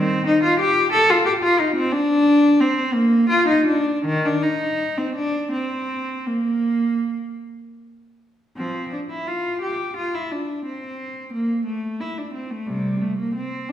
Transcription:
0.00 0.25 D#3 medium
0.00 0.27 C4 loud
0.27 0.43 D#4 loud
0.43 0.59 F4 loud
0.60 0.92 G4 loud
0.93 1.09 A4 loud
1.10 1.26 F4 loud
1.26 1.32 G4 loud
1.43 1.60 F4 loud
1.60 1.77 D#4 medium
1.76 1.93 C4 loud
1.93 2.61 D4 loud
2.60 2.95 C4 loud
2.94 3.29 A#3 loud
3.29 3.48 F4 loud
3.48 3.67 D#4 loud
3.66 4.05 D4 loud
4.05 4.24 D#3 loud
4.25 4.43 D4 loud
4.42 4.97 D#4 loud
4.98 5.16 C4 medium
5.15 5.51 D4 loud
5.52 6.25 C4 loud
6.27 7.42 A#3 medium
8.57 8.90 F3 medium
8.57 8.90 C4 medium
8.92 9.00 D4 medium
9.10 9.28 E4 medium
9.27 9.62 F4 medium
9.62 9.96 G4 medium
9.97 10.14 F4 medium
10.15 10.32 E4 medium
10.31 10.65 D4 medium
10.65 11.30 C4 medium
11.33 11.65 A#3 medium
11.66 11.99 A3 medium
12.01 12.17 E4 medium
12.18 12.34 D4 medium
12.34 12.50 C4 medium
12.51 12.67 A3 medium
12.67 12.98 C3 medium
12.67 13.00 G3 medium
13.01 13.18 A3 medium
13.19 13.35 A#3 medium
13.35 13.68 C4 medium
13.69 13.72 D4 medium

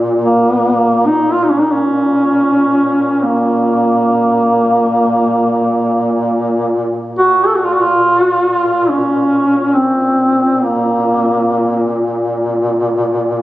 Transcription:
0.00 7.02 A#2 soft
0.21 1.08 A#3 medium
1.06 1.35 D#4 medium
1.33 1.45 F4 medium
1.43 1.52 D#4 medium
1.51 1.62 C#4 medium
1.61 1.73 D#4 medium
1.71 3.25 C#4 medium
3.23 6.76 A#3 medium
7.19 13.42 A#2 soft
7.19 7.48 F#4 medium
7.47 7.58 A4 medium
7.56 7.66 F#4 medium
7.65 7.74 F4 medium
7.73 7.82 F#4 medium
7.81 8.91 F4 medium
8.89 9.77 C#4 medium
9.75 10.65 C4 medium
10.63 11.94 A#3 medium

